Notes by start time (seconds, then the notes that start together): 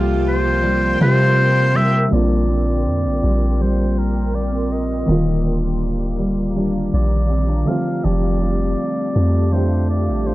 Already playing: C2 C3 F3 G3 A#3 C4 F4 G4 A#4 G5 C6
0.28 C5
0.63 G3
1.00 C3 G3 A#3 F4 C5
1.74 G3 E5
2.09 A#1 A#2 D3 G3 A#3 D4 A#4 D5 G5 C6 D6
2.13 C4 F4
2.49 C4
2.86 F2
3.05 A#1
3.23 A#1 G3
3.60 G3 C4 C5
3.98 A#4
4.34 A#3 D5
4.52 C4
4.72 D#5
5.06 D#1 D#3 G3 A#3 F4 G4 F5 A#5
5.10 D3 F4
5.45 D4
6.19 G3
6.56 G3 D4 F4
6.94 A#1 D5
7.30 C4
7.48 D4
7.65 D3 F3 G3 A3 C4 F5 A5 D6
7.71 F4
8.04 F1 F3 G4 D5
8.41 D4
9.15 F2 A3
9.52 A3 D4 G4 C5
9.90 D5
10.08 A1
10.27 D4 C5